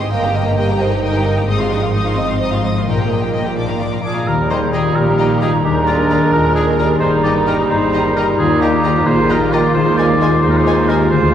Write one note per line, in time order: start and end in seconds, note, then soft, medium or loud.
0.00 0.14 G#2 medium
0.00 0.34 G3 soft
0.00 0.14 G#3 soft
0.00 0.79 G4 medium
0.00 0.12 G4 soft
0.00 0.14 G#4 soft
0.00 0.13 C5 soft
0.00 0.12 C5 soft
0.00 0.11 C6 soft
0.11 1.45 G1 medium
0.11 1.45 G2 medium
0.11 1.50 G2 medium
0.11 0.79 A#3 medium
0.11 0.22 A#4 medium
0.11 0.22 D#5 medium
0.11 0.33 F5 medium
0.11 0.22 G5 medium
0.23 0.35 G4 medium
0.23 0.34 G5 soft
0.23 0.34 A#5 soft
0.34 1.24 G3 soft
0.34 0.46 A#4 soft
0.34 0.46 D#5 soft
0.34 0.56 D#5 medium
0.34 0.46 G5 soft
0.45 0.57 G4 soft
0.45 0.57 G5 soft
0.45 0.57 A#5 soft
0.57 0.78 G4 medium
0.57 1.01 A#4 soft
0.57 0.68 A#4 soft
0.57 0.68 D#5 soft
0.57 0.68 G5 soft
0.69 0.80 G4 soft
0.69 0.80 G5 medium
0.69 0.80 A#5 medium
0.80 1.47 D#4 medium
0.80 1.50 G4 soft
0.80 0.91 A#4 medium
0.80 1.01 C5 medium
0.80 0.91 D#5 soft
0.80 0.91 G5 medium
0.91 1.03 G4 soft
0.91 1.03 G5 soft
0.91 1.03 A#5 soft
1.01 1.44 A#4 medium
1.01 1.50 A#4 soft
1.01 1.14 A#4 medium
1.01 1.13 D#5 medium
1.01 1.13 G5 medium
1.15 1.26 G4 soft
1.15 1.26 G5 soft
1.15 1.26 A#5 soft
1.25 1.50 G3 soft
1.25 1.36 A#4 soft
1.25 1.36 D#5 soft
1.25 1.37 G5 soft
1.36 1.48 G4 soft
1.36 1.48 G5 soft
1.36 1.49 A#5 soft
1.47 2.84 G#1 medium
1.47 2.84 G#2 medium
1.47 2.89 G#2 medium
1.47 1.70 C4 medium
1.47 1.59 D#4 medium
1.47 2.13 G#4 medium
1.47 1.59 D#5 medium
1.47 1.60 D#6 soft
1.59 1.71 F4 soft
1.59 1.71 F5 soft
1.59 1.71 C6 soft
1.70 2.62 F3 soft
1.70 1.78 D4 medium
1.70 1.82 D#4 soft
1.70 1.82 D#5 soft
1.70 1.83 D#6 soft
1.82 1.94 F4 soft
1.82 1.93 F5 soft
1.82 1.94 C6 soft
1.93 2.16 D#4 medium
1.93 2.04 D#4 soft
1.93 2.39 C5 soft
1.93 2.04 D#5 soft
1.93 2.05 D#6 soft
2.05 2.17 F4 soft
2.05 2.17 F5 soft
2.05 2.17 C6 soft
2.16 2.87 C4 medium
2.16 2.28 D#4 soft
2.16 2.89 F4 soft
2.16 2.38 D#5 medium
2.16 2.29 D#5 soft
2.16 2.29 D#6 soft
2.27 2.40 F4 soft
2.27 2.40 F5 soft
2.27 2.41 C6 soft
2.39 2.51 D#4 soft
2.39 2.83 C5 medium
2.39 2.89 C5 soft
2.39 2.51 D#5 soft
2.39 2.51 D#6 soft
2.50 2.63 F4 soft
2.50 2.63 F5 soft
2.50 2.64 C6 soft
2.62 2.89 F3 soft
2.62 2.75 D#4 soft
2.62 2.75 D#5 soft
2.62 2.76 D#6 soft
2.74 2.87 F4 soft
2.74 2.87 F5 soft
2.74 2.88 C6 soft
2.86 4.08 A#1 medium
2.86 4.07 A#2 medium
2.86 3.57 A#2 medium
2.86 3.93 A#3 medium
2.86 2.98 A#4 soft
2.86 4.01 A#4 medium
2.86 2.97 D#5 soft
2.86 2.99 G5 soft
2.98 3.10 G4 soft
2.98 3.10 G5 soft
2.98 3.11 A#5 soft
3.09 3.60 G3 soft
3.09 3.22 A#4 soft
3.09 3.22 D#5 soft
3.09 3.23 G5 soft
3.21 3.34 G4 soft
3.21 3.34 G5 soft
3.21 3.35 A#5 soft
3.32 3.60 D#4 soft
3.32 3.44 A#4 soft
3.32 4.04 A#4 soft
3.32 3.44 D#5 soft
3.32 3.45 G5 soft
3.45 3.58 G4 soft
3.45 3.57 G5 soft
3.45 3.58 A#5 soft
3.57 4.30 A#2 soft
3.57 3.69 D4 soft
3.57 3.68 D5 soft
3.57 3.69 D6 soft
3.69 3.81 F4 soft
3.69 3.81 F5 soft
3.69 3.81 A#5 soft
3.81 4.30 F3 soft
3.81 3.93 D4 soft
3.81 3.93 D5 soft
3.81 3.93 D6 soft
3.92 4.04 F4 soft
3.92 4.05 F5 soft
3.92 4.05 A#5 soft
4.04 4.15 D4 soft
4.04 4.30 D4 soft
4.04 4.26 F4 medium
4.04 4.29 G#4 medium
4.04 4.73 A#4 soft
4.04 4.15 D5 soft
4.04 4.15 D6 soft
4.15 4.28 F4 soft
4.15 4.28 F5 soft
4.15 4.27 A#5 soft
4.26 4.85 D#2 medium
4.26 4.86 D#2 medium
4.26 5.64 D#3 medium
4.26 5.60 G3 medium
4.26 5.61 G3 medium
4.26 6.29 D#4 medium
4.26 5.61 D#4 medium
4.26 4.49 G4 medium
4.26 4.50 A#4 medium
4.26 6.98 A#5 medium
4.50 5.67 G3 soft
4.50 4.58 G4 soft
4.50 4.61 C5 medium
4.50 4.58 D#5 soft
4.50 4.57 A#5 medium
4.73 4.95 F4 medium
4.73 4.82 G4 medium
4.73 4.97 G#4 medium
4.73 4.81 D#5 soft
4.73 4.81 A#5 medium
4.94 5.54 A#1 medium
4.94 5.53 A#2 medium
4.94 5.37 G4 medium
4.94 5.61 G4 medium
4.94 5.41 A#4 medium
5.19 5.26 G4 soft
5.19 5.27 D#5 medium
5.19 5.26 A#5 soft
5.40 5.67 D#4 soft
5.40 5.62 F4 medium
5.40 5.49 G4 soft
5.40 5.52 G#4 medium
5.40 5.49 D#5 soft
5.40 5.50 A#5 soft
5.64 6.22 D#2 medium
5.64 7.04 D#3 medium
5.64 7.04 G#3 medium
5.64 8.35 A#3 medium
5.64 7.00 D4 medium
5.64 5.86 D#4 medium
5.64 5.75 G4 medium
5.64 7.00 A#4 medium
5.87 7.04 G#3 soft
5.87 6.30 D4 medium
5.87 6.32 F4 medium
5.87 5.95 G#4 soft
5.87 5.95 D5 soft
5.87 5.95 A#5 soft
6.10 6.18 G#4 soft
6.10 6.55 A#4 soft
6.10 6.18 D5 soft
6.10 6.18 A#5 medium
6.33 6.91 D#2 medium
6.33 7.02 D4 medium
6.33 6.54 F4 medium
6.33 6.54 A#4 medium
6.55 6.77 F4 medium
6.55 6.66 G#4 medium
6.55 6.63 G#4 soft
6.55 7.70 A#4 soft
6.55 6.64 D5 soft
6.55 6.64 A#5 soft
6.78 7.04 D4 soft
6.78 7.01 G4 medium
6.78 6.87 G#4 soft
6.78 6.89 A#4 medium
6.78 6.87 D5 soft
6.78 6.87 A#5 medium
7.00 7.59 G1 medium
7.00 7.59 G2 medium
7.00 8.41 G2 medium
7.00 9.75 G3 medium
7.00 8.36 D#4 medium
7.00 9.71 D#4 medium
7.00 7.23 G#4 medium
7.00 7.11 C5 medium
7.00 9.71 A#5 medium
7.23 9.77 G3 soft
7.23 7.32 G4 soft
7.23 7.46 A#4 medium
7.23 7.34 D5 medium
7.23 7.32 D#5 soft
7.23 7.33 A#5 soft
7.46 7.93 D#4 medium
7.46 7.54 G4 soft
7.46 7.69 G4 medium
7.46 7.57 A#4 medium
7.46 7.54 D#5 soft
7.46 7.55 A#5 medium
7.70 8.28 G1 medium
7.70 8.27 G2 medium
7.70 8.13 G#4 medium
7.70 8.83 A#4 soft
7.70 8.15 C5 medium
7.93 9.06 D#4 soft
7.93 8.01 G4 medium
7.93 8.01 D#5 medium
7.93 8.01 A#5 medium
8.16 8.61 A#3 soft
8.16 8.37 G4 medium
8.16 8.24 G4 soft
8.16 8.26 A#4 medium
8.16 8.24 D#5 soft
8.16 8.24 A#5 medium
8.37 8.95 D#2 medium
8.37 8.96 D#2 medium
8.37 9.74 D#3 medium
8.37 9.72 A#3 medium
8.37 8.59 F4 medium
8.37 10.38 F4 medium
8.37 8.63 G#4 medium
8.61 9.77 A#3 soft
8.61 9.03 D#4 medium
8.61 9.08 G4 medium
8.61 8.69 G4 medium
8.61 8.69 D#5 soft
8.61 8.69 A#5 medium
8.84 8.91 G4 medium
8.84 9.28 A#4 soft
8.84 8.91 D#5 soft
8.84 8.91 A#5 medium
9.06 9.64 A#1 medium
9.06 9.63 A#2 medium
9.06 9.52 D#4 medium
9.06 9.28 G#4 medium
9.06 9.32 C5 loud
9.29 9.51 G4 medium
9.29 9.37 G4 medium
9.29 9.77 A#4 medium
9.29 9.54 A#4 medium
9.29 9.37 D#5 medium
9.29 9.37 A#5 medium
9.52 9.97 D#4 soft
9.52 9.60 G4 soft
9.52 9.73 A#4 medium
9.52 9.74 D5 medium
9.52 9.60 D#5 medium
9.52 9.60 A#5 medium
9.74 10.31 D#2 medium
9.74 10.32 D#2 medium
9.74 11.13 D#3 medium
9.74 11.34 G#3 medium
9.74 11.34 F4 medium
9.74 9.96 G#4 medium
9.74 9.97 C5 medium
9.97 10.06 G#3 medium
9.97 11.13 D#4 medium
9.97 10.06 F4 medium
9.97 10.39 A#4 medium
9.97 10.06 C5 medium
9.97 10.42 D5 loud
9.97 10.05 G#5 medium
9.97 10.04 G#5 medium
10.21 10.29 G#3 medium
10.21 10.65 F4 soft
10.21 10.29 F4 medium
10.21 10.28 F4 medium
10.21 10.28 C5 medium
10.21 10.27 G#5 medium
10.21 10.29 G#5 medium
10.42 11.00 D#2 medium
10.42 11.09 D#4 medium
10.42 10.85 G#4 medium
10.42 11.34 G#4 medium
10.42 10.51 C5 medium
10.50 10.58 A#4 medium
10.56 10.89 C5 medium
10.66 10.74 G#3 medium
10.66 10.74 F4 medium
10.66 11.34 F4 soft
10.66 10.74 F4 medium
10.66 10.74 C5 medium
10.66 10.72 G#5 medium
10.66 10.74 G#5 medium
10.88 10.97 G#3 medium
10.88 11.13 C4 soft
10.88 10.97 F4 medium
10.88 10.96 F4 soft
10.88 11.09 G4 medium
10.88 11.10 A#4 medium
10.88 10.96 C5 medium
10.88 10.95 G#5 medium
10.88 10.96 G#5 medium
11.10 11.34 D2 medium
11.10 11.34 D3 medium
11.10 11.34 F4 medium
11.10 11.32 G#4 medium
11.10 11.33 C5 medium